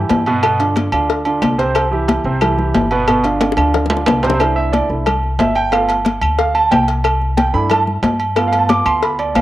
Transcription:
Already playing: grand piano E3 E4 G4
0.09 upright bass G2, cowbell, high conga, low timbale, low agogo
0.26 grand piano B2 B3 B4, low agogo
0.43 grand piano B2 B3 B4, cowbell, high conga, low agogo, claves
0.60 grand piano D3 D4 F4, cowbell, high conga, low agogo
0.76 cowbell, high conga, low timbale, low agogo
0.92 upright bass D2, grand piano D3 D4 F4, high conga, low agogo, claves
1.10 cowbell, high conga
1.25 grand piano D3 D4 F4, high conga, low agogo
1.42 upright bass C2, cowbell, high conga, low timbale, low agogo, claves
1.58 grand piano C3 C4 C5, cowbell
1.75 cowbell, high conga, low agogo, claves
1.91 grand piano E3 E4 G4, high conga
2.08 cowbell, high conga, low timbale, low agogo
2.24 upright bass C2, grand piano C3 C4 C5
2.41 grand piano E3 E4 G4, cowbell, high conga, low conga, low agogo, claves
2.58 grand piano E3 E4 G4, high conga, low conga
2.74 upright bass G1, cowbell, high conga, low timbale, low agogo
2.91 grand piano B2 B3 B4, low agogo
3.08 grand piano B2 B3, cowbell, high conga, low agogo, claves
3.24 grand piano D3 D4 F4, cowbell, high conga, low agogo
3.41 cowbell, high bongo, high conga, high timbale, low agogo
3.52 high bongo
3.57 upright bass D2, grand piano D3 D4 F4, high conga, high timbale, low agogo, claves
3.74 cowbell, low bongo, high conga
3.86 low bongo
3.90 grand piano D3 D4 F4, high conga, low timbale, low agogo
3.97 low bongo
4.06 upright bass C2, cowbell, low bongo, high conga, low timbale, low agogo, claves
4.23 grand piano C3 C4 C5, cowbell, low timbale
4.30 low bongo
4.39 grand piano A3 D4 E4 C5, cowbell, high conga, low agogo, claves
4.56 grand piano E5, high conga
4.72 grand piano D5, cowbell, high conga, low timbale, low agogo
4.89 upright bass C2, grand piano A3 D4 E4
5.06 cowbell, high conga, low conga, low agogo, claves
5.23 high conga
5.39 upright bass G1, grand piano E5, cowbell, high conga, low timbale, low agogo
5.55 grand piano G5, low agogo
5.71 grand piano A3 B3 F4 F5, cowbell, high conga, low agogo, claves
5.89 cowbell, high conga, low agogo
6.05 cowbell, high conga, low timbale, low agogo
6.21 upright bass D2, high conga, low agogo, claves
6.39 grand piano F5, cowbell, high conga
6.55 grand piano A5, high conga, low agogo
6.71 upright bass C2, grand piano G5, cowbell, high conga, low timbale, low agogo, claves
6.88 cowbell
7.04 cowbell, low agogo, claves
7.22 high conga
7.37 grand piano G5, cowbell, high conga, low timbale, low agogo
7.53 upright bass G2, grand piano A3 D4 E4 B5
7.70 grand piano A5, cowbell, high conga, low conga, low agogo, claves
7.88 high conga, low conga
8.03 upright bass G2, cowbell, high conga, low timbale, low agogo
8.20 low agogo
8.36 grand piano A3 B3 F4, cowbell, high conga, low agogo, claves
8.48 grand piano F5
8.53 cowbell, high conga, low agogo
8.59 grand piano A5
8.69 grand piano D6, cowbell, high conga, low timbale, low agogo
8.86 upright bass D2, grand piano C6, high conga, low agogo, claves
9.03 grand piano B5, cowbell, high conga
9.19 grand piano D5, high conga, low agogo
9.35 upright bass C2, grand piano F5, cowbell, high conga, low timbale, low agogo, claves

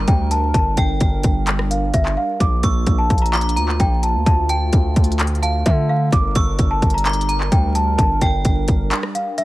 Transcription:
Already playing: analog synth pad G3 D4 A#4, synth bell A#5
0.08 808-style bass D2, celesta G5, kick, closed hi-hat
0.31 celesta A5, closed hi-hat
0.54 808-style bass G1, celesta A5, kick, closed hi-hat
0.77 808-style bass G1, celesta G5, synth bell G5, kick, closed hi-hat
1.00 808-style bass G1, kick, closed hi-hat
1.23 808-style bass G1, kick, closed hi-hat
1.47 clap, closed hi-hat
1.59 cross-stick
1.71 celesta F5, closed hi-hat
1.94 808-style bass G1, celesta E5, kick, closed hi-hat
2.06 clap
2.17 celesta F5
2.40 808-style bass A#1, analog synth pad A#3 F4, celesta D6, kick, closed hi-hat
2.63 808-style bass A#1, celesta C#6, synth bell E6, kick, closed hi-hat
2.87 808-style bass A#1, kick, closed hi-hat
2.98 celesta A5
3.10 808-style bass A#1, kick, closed hi-hat
3.18 celesta A#5, closed hi-hat
3.26 closed hi-hat
3.33 celesta A#5, synth bell D6, clap, closed hi-hat
3.41 closed hi-hat
3.49 closed hi-hat
3.56 808-style bass D2, synth bell A#5, closed hi-hat
3.68 clap
3.80 808-style bass A#1, celesta G5, kick, closed hi-hat
4.03 celesta A5, closed hi-hat
4.15 808-style bass D2
4.26 808-style bass D2, analog synth pad D3 A3, celesta A5, kick, closed hi-hat
4.49 celesta G5, synth bell A5, closed hi-hat
4.73 808-style bass D2, kick, closed hi-hat
4.96 808-style bass D2, kick, closed hi-hat
5.04 closed hi-hat
5.12 closed hi-hat
5.19 clap, closed hi-hat
5.27 closed hi-hat
5.35 closed hi-hat
5.42 celesta F5, synth bell A5, closed hi-hat
5.66 808-style bass D3, celesta E5, kick, closed hi-hat
5.89 celesta F5
6.12 808-style bass G1, analog synth pad G3 D4 A#4, celesta D6, kick, closed hi-hat
6.35 808-style bass G1, celesta C#6, synth bell E6, kick, closed hi-hat
6.59 808-style bass G1, kick, closed hi-hat
6.71 celesta A5
6.82 808-style bass G1, kick, closed hi-hat
6.90 closed hi-hat
6.94 celesta A#5, closed hi-hat
7.05 celesta A#5, synth bell D6, clap, closed hi-hat
7.13 closed hi-hat
7.21 closed hi-hat
7.29 synth bell A#5, closed hi-hat
7.40 clap
7.52 808-style bass D2, celesta G5, kick, closed hi-hat
7.75 celesta A5, closed hi-hat
7.98 808-style bass G1, celesta A5, kick, closed hi-hat
8.21 808-style bass G1, celesta G5, synth bell G5, kick, closed hi-hat
8.45 808-style bass G1, kick, closed hi-hat
8.68 808-style bass G1, kick, closed hi-hat
8.91 clap, closed hi-hat
9.03 cross-stick
9.15 celesta F5, closed hi-hat
9.38 celesta E5, closed hi-hat

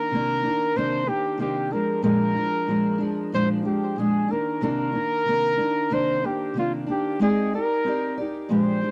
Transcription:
Already playing: steel-string acoustic guitar D#3 A#3 D4, muted trumpet A#4
0.11 steel-string acoustic guitar C3 D#3 A#3
0.15 steel-string acoustic guitar D4
0.43 steel-string acoustic guitar A#3 D4
0.47 steel-string acoustic guitar D#3
0.75 steel-string acoustic guitar C3 D#3 A#3 D4, muted trumpet C5
1.06 steel-string acoustic guitar A#3 D4, muted trumpet G4
1.10 steel-string acoustic guitar D#3
1.38 steel-string acoustic guitar C3 D#3 A#3 D4, muted trumpet G4
1.71 steel-string acoustic guitar F3 G#3 D4, muted trumpet A#4
2.03 steel-string acoustic guitar A#2 F3 G#3 D4, muted trumpet A#4
2.35 steel-string acoustic guitar F3 G#3 D4
2.67 steel-string acoustic guitar A#2 F3 G#3
2.71 steel-string acoustic guitar D4
2.98 steel-string acoustic guitar G#3 D4
3.02 steel-string acoustic guitar F3
3.32 steel-string acoustic guitar A#2 F3 G#3 D4, muted trumpet C5
3.63 steel-string acoustic guitar F3 G#3 D4, muted trumpet G4
3.96 steel-string acoustic guitar A#2 F3 G#3 D4, muted trumpet G#4
4.28 steel-string acoustic guitar A#3 D4, muted trumpet A#4
4.32 steel-string acoustic guitar D#3
4.61 steel-string acoustic guitar C3 D#3 A#3 D4, muted trumpet A#4
4.93 steel-string acoustic guitar D#3 A#3 D4
5.25 steel-string acoustic guitar C3 D#3 A#3
5.29 steel-string acoustic guitar D4
5.57 steel-string acoustic guitar A#3 D4
5.61 steel-string acoustic guitar D#3
5.90 steel-string acoustic guitar C3 D#3 A#3 D4, muted trumpet C5
6.22 steel-string acoustic guitar A#3 D4, muted trumpet G4
6.27 steel-string acoustic guitar D#3
6.54 steel-string acoustic guitar C3 D#3 A#3 D4
6.59 muted trumpet F4
6.86 steel-string acoustic guitar D#3 A#3 D4
6.91 muted trumpet G4
7.19 steel-string acoustic guitar G#3 C4 D#4 D5, muted trumpet G#4
7.53 steel-string acoustic guitar D#4 G4 D5, muted trumpet A#4
7.84 steel-string acoustic guitar C4 D#4 G4 D5
8.18 steel-string acoustic guitar D#4 G4 D5
8.49 steel-string acoustic guitar A#2 F3 G#3 D4 G4, muted trumpet C5
8.81 steel-string acoustic guitar G#3 D4 G4

